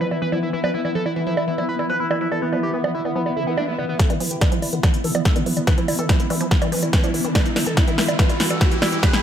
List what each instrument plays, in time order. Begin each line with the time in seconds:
Already playing: synth texture E3 B3, ambient pad E4 B4 E5 B5
0.01 synth arpeggio sound F3, analog synth lead B4
0.11 synth arpeggio sound E3, analog synth lead E4, high bongo
0.22 synth arpeggio sound E3, analog synth lead B4
0.32 synth arpeggio sound F3, analog synth lead E4, high bongo
0.43 synth arpeggio sound E3, analog synth lead E4
0.53 synth arpeggio sound E3, analog synth lead E4
0.64 synth arpeggio sound F3, analog synth lead B4, high bongo
0.74 synth arpeggio sound E3, analog synth lead E4
0.85 synth arpeggio sound E3, analog synth lead E4, high bongo
0.95 synth arpeggio sound F3, analog synth lead A4
1.06 synth arpeggio sound E3, analog synth lead E4, high bongo
1.16 synth arpeggio sound E3, analog synth lead E4
1.27 synth arpeggio sound F3, analog synth lead E4
1.37 synth arpeggio sound E3, analog synth lead E4, high bongo
1.48 synth arpeggio sound E3, analog synth lead E4
1.58 synth arpeggio sound F3, analog synth lead E4, high bongo
1.69 synth arpeggio sound E3, analog synth lead B4
1.79 synth arpeggio sound E3, analog synth lead E4, high bongo
1.90 synth arpeggio sound F3, analog synth lead B4
2.00 synth arpeggio sound E3, analog synth lead E4
2.11 synth arpeggio sound E3, analog synth lead E4, high bongo
2.21 synth arpeggio sound F3, analog synth lead E4
2.32 synth arpeggio sound E3, analog synth lead A4, high bongo
2.42 synth arpeggio sound E3, analog synth lead B3
2.53 synth arpeggio sound F3, analog synth lead B3, high bongo
2.63 synth arpeggio sound E3, analog synth lead G4
2.74 synth arpeggio sound E3, analog synth lead B3
2.84 synth arpeggio sound F3, analog synth lead B3, high bongo
2.95 synth arpeggio sound E3, analog synth lead E4
3.05 synth arpeggio sound E3, analog synth lead B3, high bongo
3.16 synth arpeggio sound F3, analog synth lead B3, swell
3.26 synth arpeggio sound E3, analog synth lead B3, high bongo
3.37 synth arpeggio sound D3, analog synth lead E4
3.47 synth arpeggio sound E3, analog synth lead B3
3.57 synth arpeggio sound B3, analog synth lead D4, high bongo
3.68 synth arpeggio sound B3, analog synth lead B3
3.78 synth arpeggio sound D3, analog synth lead B3, high bongo
3.89 synth arpeggio sound E3, analog synth lead B3
3.99 synth arpeggio sound E3, synth texture E3 B3, analog synth lead A4, kick, snare, closed hi-hat, riser
4.10 synth arpeggio sound E3, analog synth lead B3, closed hi-hat, high bongo
4.20 synth arpeggio sound F3, analog synth lead B3, open hi-hat
4.31 synth arpeggio sound E3, analog synth lead G4, closed hi-hat
4.41 synth arpeggio sound E3, analog synth lead B3, kick, snare, closed hi-hat, high bongo
4.52 synth arpeggio sound F3, analog synth lead B3, closed hi-hat
4.62 synth arpeggio sound E3, analog synth lead E4, open hi-hat, high bongo
4.73 synth arpeggio sound E3, analog synth lead B3, closed hi-hat
4.83 synth arpeggio sound F3, analog synth lead B3, kick, snare, closed hi-hat, high bongo
4.94 synth arpeggio sound E3, analog synth lead B3, closed hi-hat
5.04 synth arpeggio sound E3, analog synth lead A4, open hi-hat
5.15 synth arpeggio sound F3, analog synth lead B3, closed hi-hat, high bongo
5.25 synth arpeggio sound E3, analog synth lead A4, kick, snare, closed hi-hat
5.36 synth arpeggio sound E3, analog synth lead B3, closed hi-hat, high bongo
5.46 synth arpeggio sound F3, analog synth lead B3, open hi-hat
5.57 synth arpeggio sound E3, analog synth lead B3, closed hi-hat, high bongo
5.67 synth arpeggio sound E3, analog synth lead B4, kick, snare, closed hi-hat
5.78 synth arpeggio sound F3, analog synth lead E4, closed hi-hat
5.88 synth arpeggio sound E3, analog synth lead E4, open hi-hat, high bongo
5.99 synth arpeggio sound E3, analog synth lead A4, closed hi-hat
6.09 synth arpeggio sound F3, analog synth lead E4, kick, snare, closed hi-hat, high bongo
6.20 synth arpeggio sound E3, analog synth lead E4, closed hi-hat
6.30 synth arpeggio sound E3, analog synth lead E4, open hi-hat, high bongo
6.41 synth arpeggio sound F3, analog synth lead E4, closed hi-hat
6.51 synth arpeggio sound E3, analog synth lead E4, kick, snare, closed hi-hat
6.62 synth arpeggio sound E3, analog synth lead E4, closed hi-hat, high bongo
6.72 synth arpeggio sound F3, analog synth lead B4, open hi-hat
6.83 synth arpeggio sound E3, analog synth lead E4, closed hi-hat, high bongo
6.93 synth arpeggio sound E3, analog synth lead B4, kick, snare, closed hi-hat
7.04 synth arpeggio sound F3, analog synth lead E4, closed hi-hat, high bongo
7.14 synth arpeggio sound E3, analog synth lead E4, open hi-hat
7.25 synth arpeggio sound E3, analog synth lead E4, closed hi-hat
7.35 synth arpeggio sound E3, analog synth lead B4, kick, snare, closed hi-hat, high bongo
7.46 synth arpeggio sound E3, analog synth lead E4, closed hi-hat
7.56 synth arpeggio sound E3, analog synth lead E4, snare, open hi-hat, high bongo
7.67 synth arpeggio sound E3, analog synth lead A4, closed hi-hat
7.77 synth arpeggio sound E3, analog synth lead E4, kick, snare, closed hi-hat, high bongo
7.88 synth arpeggio sound E3, analog synth lead E4, closed hi-hat
7.98 synth arpeggio sound E3, analog synth lead E4, snare, open hi-hat
8.09 synth arpeggio sound E3, analog synth lead E4, closed hi-hat, high bongo
8.19 synth arpeggio sound E3, analog synth lead B4, kick, snare, closed hi-hat
8.29 synth arpeggio sound E3, analog synth lead E4, closed hi-hat, high bongo
8.40 synth arpeggio sound E3, analog synth lead E4, snare, open hi-hat
8.50 synth arpeggio sound E3, analog synth lead A4, closed hi-hat, high bongo
8.61 analog synth lead E4, kick, snare, closed hi-hat
8.71 synth arpeggio sound E3, analog synth lead E4, closed hi-hat
8.82 synth arpeggio sound E3, analog synth lead E4, snare, open hi-hat, high bongo
8.92 synth arpeggio sound E3, analog synth lead E4, closed hi-hat
9.03 synth arpeggio sound E3, analog synth lead B4, kick, snare, closed hi-hat, high bongo
9.13 synth arpeggio sound E3, analog synth lead E4, snare, closed hi-hat